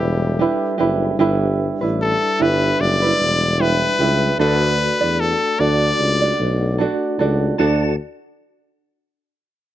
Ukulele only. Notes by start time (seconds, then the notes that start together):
Already playing: D4 E4 B4
0.39 D4 E4 G4 B4
0.78 D4 E4 G4 B4
1.19 D4 E4 G4 B4
1.81 D4 E4 B4
2.39 D4 E4 G4 B4
3.02 D4 E4 B4
3.59 D4 E4 G4 B4
3.99 D4 E4 G4 B4
4.39 D4 F#4 A4 D5
5.01 D4 F#4 D5
5.59 D4 F#4 A4 D5
6.22 D4 F#4 D5
6.78 D4 F#4 A4 D5
7.19 D4 F#4 A4 D5
7.58 D4 F#4 A4 D5